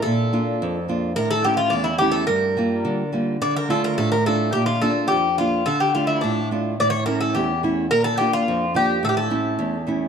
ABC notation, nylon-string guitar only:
X:1
M:2/4
L:1/8
Q:1/4=107
K:none
V:1 name="Nylon-string guitar"
_B,, [_B,DF] F,, [B,DF] | A,, [A,^CE] E,, [A,CE] | G,, [G,_B,F] D, [G,B,F] | D, [A,DF] A,, [A,DF] |
_B,, [_B,DF] F,, [B,DF] | D, [A,DF] A,, [A,DF] | A,, [A,^CE] E,, [A,CE] | _B,, [_B,DF] F,, [B,DF] |
A,, [A,^CE] E,, [A,CE] |]